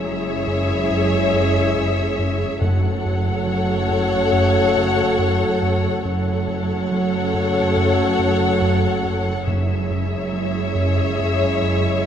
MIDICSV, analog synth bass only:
0, 0, Header, 1, 2, 480
1, 0, Start_track
1, 0, Key_signature, 3, "minor"
1, 0, Tempo, 857143
1, 1464, Time_signature, 4, 2, 24, 8
1, 6754, End_track
2, 0, Start_track
2, 0, Title_t, "Analog synth bass"
2, 0, Program_c, 0, 38
2, 25, Note_on_c, 0, 54, 61
2, 169, Note_off_c, 0, 54, 0
2, 265, Note_on_c, 0, 42, 85
2, 409, Note_off_c, 0, 42, 0
2, 506, Note_on_c, 0, 42, 58
2, 650, Note_off_c, 0, 42, 0
2, 748, Note_on_c, 0, 42, 60
2, 891, Note_off_c, 0, 42, 0
2, 983, Note_on_c, 0, 42, 87
2, 1127, Note_off_c, 0, 42, 0
2, 1228, Note_on_c, 0, 42, 58
2, 1371, Note_off_c, 0, 42, 0
2, 1468, Note_on_c, 0, 42, 82
2, 1611, Note_off_c, 0, 42, 0
2, 1710, Note_on_c, 0, 42, 58
2, 1852, Note_off_c, 0, 42, 0
2, 1945, Note_on_c, 0, 54, 53
2, 2089, Note_off_c, 0, 54, 0
2, 2184, Note_on_c, 0, 42, 83
2, 2328, Note_off_c, 0, 42, 0
2, 2423, Note_on_c, 0, 42, 58
2, 2568, Note_off_c, 0, 42, 0
2, 2669, Note_on_c, 0, 42, 53
2, 2812, Note_off_c, 0, 42, 0
2, 2906, Note_on_c, 0, 42, 91
2, 3049, Note_off_c, 0, 42, 0
2, 3151, Note_on_c, 0, 42, 50
2, 3293, Note_off_c, 0, 42, 0
2, 3388, Note_on_c, 0, 42, 68
2, 3531, Note_off_c, 0, 42, 0
2, 3630, Note_on_c, 0, 42, 59
2, 3772, Note_off_c, 0, 42, 0
2, 3873, Note_on_c, 0, 54, 52
2, 4014, Note_off_c, 0, 54, 0
2, 4111, Note_on_c, 0, 42, 82
2, 4253, Note_off_c, 0, 42, 0
2, 4351, Note_on_c, 0, 42, 57
2, 4493, Note_off_c, 0, 42, 0
2, 4586, Note_on_c, 0, 42, 56
2, 4730, Note_off_c, 0, 42, 0
2, 4826, Note_on_c, 0, 42, 82
2, 4969, Note_off_c, 0, 42, 0
2, 5064, Note_on_c, 0, 42, 51
2, 5208, Note_off_c, 0, 42, 0
2, 5307, Note_on_c, 0, 42, 71
2, 5450, Note_off_c, 0, 42, 0
2, 5546, Note_on_c, 0, 42, 59
2, 5689, Note_off_c, 0, 42, 0
2, 5784, Note_on_c, 0, 54, 45
2, 5928, Note_off_c, 0, 54, 0
2, 6020, Note_on_c, 0, 42, 78
2, 6165, Note_off_c, 0, 42, 0
2, 6267, Note_on_c, 0, 42, 53
2, 6410, Note_off_c, 0, 42, 0
2, 6509, Note_on_c, 0, 42, 53
2, 6651, Note_off_c, 0, 42, 0
2, 6754, End_track
0, 0, End_of_file